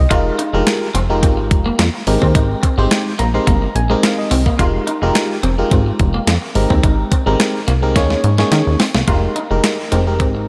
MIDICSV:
0, 0, Header, 1, 6, 480
1, 0, Start_track
1, 0, Key_signature, -4, "minor"
1, 0, Tempo, 560748
1, 91, Time_signature, 4, 2, 24, 8
1, 8972, End_track
2, 0, Start_track
2, 0, Title_t, "FM electric piano"
2, 0, Program_c, 0, 5
2, 0, Note_on_c, 0, 75, 70
2, 91, Note_on_c, 0, 56, 88
2, 92, Note_on_c, 0, 63, 78
2, 94, Note_on_c, 0, 65, 83
2, 96, Note_on_c, 0, 67, 86
2, 97, Note_on_c, 0, 70, 104
2, 208, Note_off_c, 0, 75, 0
2, 317, Note_off_c, 0, 56, 0
2, 317, Note_off_c, 0, 63, 0
2, 318, Note_off_c, 0, 65, 0
2, 319, Note_off_c, 0, 67, 0
2, 320, Note_off_c, 0, 70, 0
2, 458, Note_on_c, 0, 56, 102
2, 460, Note_on_c, 0, 63, 78
2, 461, Note_on_c, 0, 65, 86
2, 463, Note_on_c, 0, 67, 81
2, 466, Note_on_c, 0, 70, 106
2, 754, Note_off_c, 0, 56, 0
2, 755, Note_off_c, 0, 63, 0
2, 756, Note_off_c, 0, 65, 0
2, 757, Note_off_c, 0, 67, 0
2, 758, Note_off_c, 0, 70, 0
2, 937, Note_on_c, 0, 56, 81
2, 940, Note_on_c, 0, 63, 78
2, 941, Note_on_c, 0, 65, 73
2, 943, Note_on_c, 0, 67, 79
2, 945, Note_on_c, 0, 70, 89
2, 1531, Note_off_c, 0, 56, 0
2, 1532, Note_off_c, 0, 63, 0
2, 1533, Note_off_c, 0, 65, 0
2, 1534, Note_off_c, 0, 67, 0
2, 1535, Note_off_c, 0, 70, 0
2, 1771, Note_on_c, 0, 56, 91
2, 1772, Note_on_c, 0, 60, 79
2, 1774, Note_on_c, 0, 63, 80
2, 1776, Note_on_c, 0, 67, 87
2, 1777, Note_on_c, 0, 70, 96
2, 2251, Note_off_c, 0, 56, 0
2, 2251, Note_off_c, 0, 60, 0
2, 2252, Note_off_c, 0, 63, 0
2, 2253, Note_off_c, 0, 67, 0
2, 2254, Note_off_c, 0, 70, 0
2, 2377, Note_on_c, 0, 56, 90
2, 2378, Note_on_c, 0, 60, 96
2, 2380, Note_on_c, 0, 63, 88
2, 2382, Note_on_c, 0, 67, 89
2, 2384, Note_on_c, 0, 72, 98
2, 2674, Note_off_c, 0, 56, 0
2, 2675, Note_off_c, 0, 60, 0
2, 2676, Note_off_c, 0, 63, 0
2, 2677, Note_off_c, 0, 67, 0
2, 2677, Note_off_c, 0, 72, 0
2, 2734, Note_on_c, 0, 82, 77
2, 2850, Note_off_c, 0, 82, 0
2, 2857, Note_on_c, 0, 56, 79
2, 2859, Note_on_c, 0, 60, 75
2, 2861, Note_on_c, 0, 63, 76
2, 2861, Note_on_c, 0, 84, 67
2, 2863, Note_on_c, 0, 67, 72
2, 2864, Note_on_c, 0, 70, 95
2, 2964, Note_off_c, 0, 84, 0
2, 2972, Note_on_c, 0, 82, 68
2, 3154, Note_off_c, 0, 56, 0
2, 3155, Note_off_c, 0, 60, 0
2, 3156, Note_off_c, 0, 63, 0
2, 3157, Note_off_c, 0, 67, 0
2, 3158, Note_off_c, 0, 70, 0
2, 3195, Note_off_c, 0, 82, 0
2, 3214, Note_on_c, 0, 80, 77
2, 3338, Note_on_c, 0, 56, 85
2, 3340, Note_on_c, 0, 60, 90
2, 3341, Note_on_c, 0, 63, 86
2, 3343, Note_on_c, 0, 67, 83
2, 3344, Note_on_c, 0, 70, 98
2, 3436, Note_off_c, 0, 80, 0
2, 3455, Note_on_c, 0, 77, 77
2, 3571, Note_off_c, 0, 77, 0
2, 3582, Note_on_c, 0, 75, 74
2, 3707, Note_off_c, 0, 56, 0
2, 3708, Note_off_c, 0, 60, 0
2, 3709, Note_off_c, 0, 63, 0
2, 3709, Note_off_c, 0, 67, 0
2, 3710, Note_off_c, 0, 70, 0
2, 3908, Note_off_c, 0, 75, 0
2, 3931, Note_on_c, 0, 56, 93
2, 3933, Note_on_c, 0, 63, 77
2, 3935, Note_on_c, 0, 65, 80
2, 3936, Note_on_c, 0, 67, 75
2, 3938, Note_on_c, 0, 70, 95
2, 4157, Note_off_c, 0, 56, 0
2, 4158, Note_off_c, 0, 63, 0
2, 4159, Note_off_c, 0, 65, 0
2, 4159, Note_off_c, 0, 67, 0
2, 4160, Note_off_c, 0, 70, 0
2, 4298, Note_on_c, 0, 56, 97
2, 4300, Note_on_c, 0, 63, 85
2, 4301, Note_on_c, 0, 65, 83
2, 4303, Note_on_c, 0, 67, 92
2, 4305, Note_on_c, 0, 70, 105
2, 4594, Note_off_c, 0, 56, 0
2, 4595, Note_off_c, 0, 63, 0
2, 4596, Note_off_c, 0, 65, 0
2, 4597, Note_off_c, 0, 67, 0
2, 4598, Note_off_c, 0, 70, 0
2, 4777, Note_on_c, 0, 56, 89
2, 4779, Note_on_c, 0, 63, 79
2, 4781, Note_on_c, 0, 65, 87
2, 4782, Note_on_c, 0, 67, 79
2, 4783, Note_on_c, 0, 70, 89
2, 5371, Note_off_c, 0, 56, 0
2, 5372, Note_off_c, 0, 63, 0
2, 5373, Note_off_c, 0, 65, 0
2, 5373, Note_off_c, 0, 67, 0
2, 5374, Note_off_c, 0, 70, 0
2, 5607, Note_on_c, 0, 56, 81
2, 5608, Note_on_c, 0, 60, 84
2, 5610, Note_on_c, 0, 63, 85
2, 5612, Note_on_c, 0, 67, 80
2, 5614, Note_on_c, 0, 70, 101
2, 6089, Note_off_c, 0, 56, 0
2, 6089, Note_off_c, 0, 60, 0
2, 6090, Note_off_c, 0, 63, 0
2, 6091, Note_off_c, 0, 67, 0
2, 6092, Note_off_c, 0, 70, 0
2, 6215, Note_on_c, 0, 56, 105
2, 6216, Note_on_c, 0, 60, 96
2, 6218, Note_on_c, 0, 63, 84
2, 6220, Note_on_c, 0, 67, 89
2, 6221, Note_on_c, 0, 70, 101
2, 6513, Note_off_c, 0, 56, 0
2, 6514, Note_off_c, 0, 60, 0
2, 6514, Note_off_c, 0, 63, 0
2, 6516, Note_off_c, 0, 67, 0
2, 6516, Note_off_c, 0, 70, 0
2, 6695, Note_on_c, 0, 56, 84
2, 6696, Note_on_c, 0, 60, 77
2, 6698, Note_on_c, 0, 63, 79
2, 6700, Note_on_c, 0, 67, 76
2, 6701, Note_on_c, 0, 70, 101
2, 6801, Note_off_c, 0, 63, 0
2, 6808, Note_on_c, 0, 58, 86
2, 6809, Note_off_c, 0, 56, 0
2, 6809, Note_off_c, 0, 60, 0
2, 6810, Note_on_c, 0, 61, 79
2, 6811, Note_on_c, 0, 63, 86
2, 6812, Note_off_c, 0, 67, 0
2, 6812, Note_off_c, 0, 70, 0
2, 6814, Note_on_c, 0, 68, 77
2, 6816, Note_on_c, 0, 73, 102
2, 7100, Note_off_c, 0, 58, 0
2, 7101, Note_off_c, 0, 61, 0
2, 7102, Note_off_c, 0, 63, 0
2, 7103, Note_off_c, 0, 68, 0
2, 7104, Note_off_c, 0, 73, 0
2, 7176, Note_on_c, 0, 58, 93
2, 7176, Note_on_c, 0, 61, 81
2, 7178, Note_on_c, 0, 63, 71
2, 7181, Note_on_c, 0, 68, 84
2, 7182, Note_on_c, 0, 73, 98
2, 7546, Note_off_c, 0, 58, 0
2, 7546, Note_off_c, 0, 61, 0
2, 7547, Note_off_c, 0, 63, 0
2, 7548, Note_off_c, 0, 68, 0
2, 7549, Note_off_c, 0, 73, 0
2, 7767, Note_on_c, 0, 56, 80
2, 7769, Note_on_c, 0, 63, 72
2, 7772, Note_on_c, 0, 67, 71
2, 7773, Note_on_c, 0, 70, 79
2, 7995, Note_off_c, 0, 56, 0
2, 7996, Note_off_c, 0, 63, 0
2, 7997, Note_off_c, 0, 67, 0
2, 7998, Note_off_c, 0, 70, 0
2, 8136, Note_on_c, 0, 56, 79
2, 8137, Note_on_c, 0, 63, 71
2, 8139, Note_on_c, 0, 67, 81
2, 8142, Note_on_c, 0, 70, 98
2, 8361, Note_off_c, 0, 56, 0
2, 8361, Note_off_c, 0, 63, 0
2, 8363, Note_off_c, 0, 67, 0
2, 8364, Note_off_c, 0, 70, 0
2, 8488, Note_on_c, 0, 56, 80
2, 8491, Note_on_c, 0, 63, 74
2, 8492, Note_on_c, 0, 67, 68
2, 8494, Note_on_c, 0, 70, 85
2, 8569, Note_off_c, 0, 56, 0
2, 8570, Note_off_c, 0, 63, 0
2, 8571, Note_off_c, 0, 67, 0
2, 8572, Note_off_c, 0, 70, 0
2, 8615, Note_on_c, 0, 56, 68
2, 8617, Note_on_c, 0, 63, 68
2, 8620, Note_on_c, 0, 67, 71
2, 8622, Note_on_c, 0, 70, 81
2, 8972, Note_off_c, 0, 56, 0
2, 8972, Note_off_c, 0, 63, 0
2, 8972, Note_off_c, 0, 67, 0
2, 8972, Note_off_c, 0, 70, 0
2, 8972, End_track
3, 0, Start_track
3, 0, Title_t, "Clean electric guitar"
3, 0, Program_c, 1, 27
3, 89, Note_on_c, 1, 65, 96
3, 182, Note_off_c, 1, 65, 0
3, 330, Note_on_c, 1, 63, 88
3, 422, Note_off_c, 1, 63, 0
3, 810, Note_on_c, 1, 60, 99
3, 902, Note_off_c, 1, 60, 0
3, 1050, Note_on_c, 1, 60, 81
3, 1142, Note_off_c, 1, 60, 0
3, 1418, Note_on_c, 1, 58, 76
3, 1499, Note_off_c, 1, 58, 0
3, 1530, Note_on_c, 1, 58, 80
3, 1622, Note_off_c, 1, 58, 0
3, 1898, Note_on_c, 1, 60, 80
3, 1979, Note_off_c, 1, 60, 0
3, 2011, Note_on_c, 1, 63, 94
3, 2103, Note_off_c, 1, 63, 0
3, 2249, Note_on_c, 1, 60, 82
3, 2342, Note_off_c, 1, 60, 0
3, 2730, Note_on_c, 1, 58, 86
3, 2822, Note_off_c, 1, 58, 0
3, 2970, Note_on_c, 1, 58, 89
3, 3062, Note_off_c, 1, 58, 0
3, 3336, Note_on_c, 1, 56, 79
3, 3418, Note_off_c, 1, 56, 0
3, 3690, Note_on_c, 1, 60, 89
3, 3782, Note_off_c, 1, 60, 0
3, 3818, Note_on_c, 1, 58, 82
3, 3899, Note_off_c, 1, 58, 0
3, 3930, Note_on_c, 1, 65, 99
3, 4022, Note_off_c, 1, 65, 0
3, 4169, Note_on_c, 1, 63, 83
3, 4262, Note_off_c, 1, 63, 0
3, 4651, Note_on_c, 1, 60, 89
3, 4742, Note_off_c, 1, 60, 0
3, 4892, Note_on_c, 1, 60, 84
3, 4983, Note_off_c, 1, 60, 0
3, 5258, Note_on_c, 1, 58, 77
3, 5339, Note_off_c, 1, 58, 0
3, 5370, Note_on_c, 1, 58, 82
3, 5462, Note_off_c, 1, 58, 0
3, 5738, Note_on_c, 1, 60, 74
3, 5819, Note_off_c, 1, 60, 0
3, 5850, Note_on_c, 1, 63, 91
3, 5942, Note_off_c, 1, 63, 0
3, 6091, Note_on_c, 1, 60, 81
3, 6183, Note_off_c, 1, 60, 0
3, 6572, Note_on_c, 1, 58, 97
3, 6663, Note_off_c, 1, 58, 0
3, 6811, Note_on_c, 1, 58, 89
3, 6903, Note_off_c, 1, 58, 0
3, 7179, Note_on_c, 1, 56, 78
3, 7260, Note_off_c, 1, 56, 0
3, 7530, Note_on_c, 1, 60, 84
3, 7622, Note_off_c, 1, 60, 0
3, 7658, Note_on_c, 1, 58, 84
3, 7739, Note_off_c, 1, 58, 0
3, 7771, Note_on_c, 1, 65, 83
3, 7862, Note_off_c, 1, 65, 0
3, 8011, Note_on_c, 1, 63, 74
3, 8102, Note_off_c, 1, 63, 0
3, 8490, Note_on_c, 1, 60, 86
3, 8582, Note_off_c, 1, 60, 0
3, 8730, Note_on_c, 1, 60, 79
3, 8822, Note_off_c, 1, 60, 0
3, 8972, End_track
4, 0, Start_track
4, 0, Title_t, "Analog synth bass"
4, 0, Program_c, 2, 38
4, 91, Note_on_c, 2, 29, 106
4, 265, Note_off_c, 2, 29, 0
4, 457, Note_on_c, 2, 29, 93
4, 539, Note_off_c, 2, 29, 0
4, 809, Note_on_c, 2, 29, 93
4, 1051, Note_on_c, 2, 32, 107
4, 1064, Note_off_c, 2, 29, 0
4, 1293, Note_on_c, 2, 29, 108
4, 1306, Note_off_c, 2, 32, 0
4, 1467, Note_off_c, 2, 29, 0
4, 1531, Note_on_c, 2, 41, 109
4, 1623, Note_off_c, 2, 41, 0
4, 1770, Note_on_c, 2, 32, 106
4, 1863, Note_off_c, 2, 32, 0
4, 1897, Note_on_c, 2, 39, 99
4, 2011, Note_on_c, 2, 32, 104
4, 2024, Note_off_c, 2, 39, 0
4, 2186, Note_off_c, 2, 32, 0
4, 2378, Note_on_c, 2, 32, 111
4, 2460, Note_off_c, 2, 32, 0
4, 2732, Note_on_c, 2, 34, 98
4, 2906, Note_off_c, 2, 34, 0
4, 2972, Note_on_c, 2, 31, 102
4, 3146, Note_off_c, 2, 31, 0
4, 3212, Note_on_c, 2, 34, 99
4, 3386, Note_off_c, 2, 34, 0
4, 3692, Note_on_c, 2, 36, 96
4, 3866, Note_off_c, 2, 36, 0
4, 3932, Note_on_c, 2, 29, 108
4, 4106, Note_off_c, 2, 29, 0
4, 4298, Note_on_c, 2, 29, 93
4, 4380, Note_off_c, 2, 29, 0
4, 4650, Note_on_c, 2, 29, 102
4, 4825, Note_off_c, 2, 29, 0
4, 4892, Note_on_c, 2, 32, 103
4, 5066, Note_off_c, 2, 32, 0
4, 5132, Note_on_c, 2, 29, 102
4, 5306, Note_off_c, 2, 29, 0
4, 5369, Note_on_c, 2, 41, 113
4, 5462, Note_off_c, 2, 41, 0
4, 5611, Note_on_c, 2, 32, 113
4, 5703, Note_off_c, 2, 32, 0
4, 5738, Note_on_c, 2, 39, 113
4, 5820, Note_off_c, 2, 39, 0
4, 5850, Note_on_c, 2, 32, 110
4, 6025, Note_off_c, 2, 32, 0
4, 6217, Note_on_c, 2, 32, 114
4, 6299, Note_off_c, 2, 32, 0
4, 6572, Note_on_c, 2, 36, 96
4, 6811, Note_on_c, 2, 39, 118
4, 6824, Note_off_c, 2, 36, 0
4, 6985, Note_off_c, 2, 39, 0
4, 7053, Note_on_c, 2, 44, 99
4, 7227, Note_off_c, 2, 44, 0
4, 7290, Note_on_c, 2, 51, 118
4, 7383, Note_off_c, 2, 51, 0
4, 7420, Note_on_c, 2, 39, 91
4, 7501, Note_off_c, 2, 39, 0
4, 7659, Note_on_c, 2, 36, 85
4, 7741, Note_off_c, 2, 36, 0
4, 7769, Note_on_c, 2, 29, 101
4, 7944, Note_off_c, 2, 29, 0
4, 8138, Note_on_c, 2, 29, 93
4, 8220, Note_off_c, 2, 29, 0
4, 8492, Note_on_c, 2, 29, 91
4, 8731, Note_on_c, 2, 32, 87
4, 8744, Note_off_c, 2, 29, 0
4, 8972, Note_off_c, 2, 32, 0
4, 8972, End_track
5, 0, Start_track
5, 0, Title_t, "Muted clean electric guitar strokes"
5, 457, Note_on_c, 9, 29, 52
5, 542, Note_off_c, 9, 29, 0
5, 1175, Note_on_c, 9, 29, 45
5, 1261, Note_off_c, 9, 29, 0
5, 1658, Note_on_c, 9, 29, 41
5, 1743, Note_off_c, 9, 29, 0
5, 2377, Note_on_c, 9, 29, 48
5, 2463, Note_off_c, 9, 29, 0
5, 3100, Note_on_c, 9, 29, 45
5, 3186, Note_off_c, 9, 29, 0
5, 3450, Note_on_c, 9, 29, 41
5, 3536, Note_off_c, 9, 29, 0
5, 4296, Note_on_c, 9, 29, 50
5, 4382, Note_off_c, 9, 29, 0
5, 5019, Note_on_c, 9, 29, 45
5, 5105, Note_off_c, 9, 29, 0
5, 5497, Note_on_c, 9, 29, 37
5, 5583, Note_off_c, 9, 29, 0
5, 6218, Note_on_c, 9, 29, 45
5, 6304, Note_off_c, 9, 29, 0
5, 6937, Note_on_c, 9, 29, 49
5, 7023, Note_off_c, 9, 29, 0
5, 7291, Note_on_c, 9, 29, 41
5, 7377, Note_off_c, 9, 29, 0
5, 8138, Note_on_c, 9, 29, 44
5, 8224, Note_off_c, 9, 29, 0
5, 8857, Note_on_c, 9, 29, 45
5, 8943, Note_off_c, 9, 29, 0
5, 8972, End_track
6, 0, Start_track
6, 0, Title_t, "Drums"
6, 92, Note_on_c, 9, 36, 123
6, 93, Note_on_c, 9, 42, 96
6, 177, Note_off_c, 9, 36, 0
6, 178, Note_off_c, 9, 42, 0
6, 333, Note_on_c, 9, 42, 84
6, 419, Note_off_c, 9, 42, 0
6, 571, Note_on_c, 9, 42, 102
6, 572, Note_on_c, 9, 38, 127
6, 577, Note_on_c, 9, 39, 108
6, 657, Note_off_c, 9, 42, 0
6, 658, Note_off_c, 9, 38, 0
6, 663, Note_off_c, 9, 39, 0
6, 812, Note_on_c, 9, 42, 82
6, 897, Note_off_c, 9, 42, 0
6, 1052, Note_on_c, 9, 36, 119
6, 1053, Note_on_c, 9, 42, 99
6, 1137, Note_off_c, 9, 36, 0
6, 1138, Note_off_c, 9, 42, 0
6, 1292, Note_on_c, 9, 42, 75
6, 1293, Note_on_c, 9, 36, 96
6, 1378, Note_off_c, 9, 42, 0
6, 1379, Note_off_c, 9, 36, 0
6, 1531, Note_on_c, 9, 42, 86
6, 1533, Note_on_c, 9, 38, 114
6, 1537, Note_on_c, 9, 39, 82
6, 1617, Note_off_c, 9, 42, 0
6, 1618, Note_off_c, 9, 38, 0
6, 1623, Note_off_c, 9, 39, 0
6, 1771, Note_on_c, 9, 46, 81
6, 1857, Note_off_c, 9, 46, 0
6, 1898, Note_on_c, 9, 36, 78
6, 1984, Note_off_c, 9, 36, 0
6, 2012, Note_on_c, 9, 36, 127
6, 2012, Note_on_c, 9, 42, 100
6, 2097, Note_off_c, 9, 36, 0
6, 2098, Note_off_c, 9, 42, 0
6, 2253, Note_on_c, 9, 36, 95
6, 2254, Note_on_c, 9, 42, 91
6, 2339, Note_off_c, 9, 36, 0
6, 2340, Note_off_c, 9, 42, 0
6, 2492, Note_on_c, 9, 42, 110
6, 2493, Note_on_c, 9, 38, 127
6, 2498, Note_on_c, 9, 39, 113
6, 2577, Note_off_c, 9, 42, 0
6, 2579, Note_off_c, 9, 38, 0
6, 2583, Note_off_c, 9, 39, 0
6, 2732, Note_on_c, 9, 42, 77
6, 2817, Note_off_c, 9, 42, 0
6, 2972, Note_on_c, 9, 36, 122
6, 2973, Note_on_c, 9, 42, 99
6, 3058, Note_off_c, 9, 36, 0
6, 3059, Note_off_c, 9, 42, 0
6, 3215, Note_on_c, 9, 42, 78
6, 3301, Note_off_c, 9, 42, 0
6, 3452, Note_on_c, 9, 42, 96
6, 3454, Note_on_c, 9, 38, 115
6, 3458, Note_on_c, 9, 39, 85
6, 3538, Note_off_c, 9, 42, 0
6, 3539, Note_off_c, 9, 38, 0
6, 3544, Note_off_c, 9, 39, 0
6, 3690, Note_on_c, 9, 46, 83
6, 3776, Note_off_c, 9, 46, 0
6, 3818, Note_on_c, 9, 36, 89
6, 3904, Note_off_c, 9, 36, 0
6, 3931, Note_on_c, 9, 36, 127
6, 3932, Note_on_c, 9, 42, 113
6, 4017, Note_off_c, 9, 36, 0
6, 4017, Note_off_c, 9, 42, 0
6, 4172, Note_on_c, 9, 42, 88
6, 4258, Note_off_c, 9, 42, 0
6, 4410, Note_on_c, 9, 42, 110
6, 4412, Note_on_c, 9, 38, 127
6, 4416, Note_on_c, 9, 39, 121
6, 4496, Note_off_c, 9, 42, 0
6, 4497, Note_off_c, 9, 38, 0
6, 4502, Note_off_c, 9, 39, 0
6, 4652, Note_on_c, 9, 42, 75
6, 4738, Note_off_c, 9, 42, 0
6, 4891, Note_on_c, 9, 42, 101
6, 4892, Note_on_c, 9, 36, 127
6, 4977, Note_off_c, 9, 36, 0
6, 4977, Note_off_c, 9, 42, 0
6, 5132, Note_on_c, 9, 42, 79
6, 5133, Note_on_c, 9, 36, 81
6, 5217, Note_off_c, 9, 42, 0
6, 5219, Note_off_c, 9, 36, 0
6, 5371, Note_on_c, 9, 42, 92
6, 5372, Note_on_c, 9, 38, 105
6, 5377, Note_on_c, 9, 39, 84
6, 5456, Note_off_c, 9, 42, 0
6, 5458, Note_off_c, 9, 38, 0
6, 5462, Note_off_c, 9, 39, 0
6, 5610, Note_on_c, 9, 46, 76
6, 5695, Note_off_c, 9, 46, 0
6, 5738, Note_on_c, 9, 36, 87
6, 5823, Note_off_c, 9, 36, 0
6, 5851, Note_on_c, 9, 36, 115
6, 5851, Note_on_c, 9, 42, 99
6, 5936, Note_off_c, 9, 36, 0
6, 5937, Note_off_c, 9, 42, 0
6, 6091, Note_on_c, 9, 42, 82
6, 6092, Note_on_c, 9, 36, 103
6, 6177, Note_off_c, 9, 42, 0
6, 6178, Note_off_c, 9, 36, 0
6, 6332, Note_on_c, 9, 42, 108
6, 6333, Note_on_c, 9, 38, 127
6, 6338, Note_on_c, 9, 39, 112
6, 6418, Note_off_c, 9, 42, 0
6, 6419, Note_off_c, 9, 38, 0
6, 6424, Note_off_c, 9, 39, 0
6, 6572, Note_on_c, 9, 42, 78
6, 6658, Note_off_c, 9, 42, 0
6, 6811, Note_on_c, 9, 36, 123
6, 6812, Note_on_c, 9, 38, 71
6, 6813, Note_on_c, 9, 42, 101
6, 6897, Note_off_c, 9, 36, 0
6, 6898, Note_off_c, 9, 38, 0
6, 6899, Note_off_c, 9, 42, 0
6, 6937, Note_on_c, 9, 38, 51
6, 7023, Note_off_c, 9, 38, 0
6, 7052, Note_on_c, 9, 42, 69
6, 7137, Note_off_c, 9, 42, 0
6, 7176, Note_on_c, 9, 38, 74
6, 7262, Note_off_c, 9, 38, 0
6, 7290, Note_on_c, 9, 42, 84
6, 7291, Note_on_c, 9, 38, 93
6, 7376, Note_off_c, 9, 38, 0
6, 7376, Note_off_c, 9, 42, 0
6, 7529, Note_on_c, 9, 46, 76
6, 7531, Note_on_c, 9, 38, 92
6, 7615, Note_off_c, 9, 46, 0
6, 7617, Note_off_c, 9, 38, 0
6, 7657, Note_on_c, 9, 38, 96
6, 7743, Note_off_c, 9, 38, 0
6, 7769, Note_on_c, 9, 42, 97
6, 7770, Note_on_c, 9, 36, 114
6, 7854, Note_off_c, 9, 42, 0
6, 7855, Note_off_c, 9, 36, 0
6, 8011, Note_on_c, 9, 42, 82
6, 8097, Note_off_c, 9, 42, 0
6, 8249, Note_on_c, 9, 42, 94
6, 8250, Note_on_c, 9, 38, 126
6, 8255, Note_on_c, 9, 39, 89
6, 8334, Note_off_c, 9, 42, 0
6, 8336, Note_off_c, 9, 38, 0
6, 8340, Note_off_c, 9, 39, 0
6, 8490, Note_on_c, 9, 42, 68
6, 8576, Note_off_c, 9, 42, 0
6, 8730, Note_on_c, 9, 42, 85
6, 8731, Note_on_c, 9, 36, 108
6, 8816, Note_off_c, 9, 36, 0
6, 8816, Note_off_c, 9, 42, 0
6, 8972, End_track
0, 0, End_of_file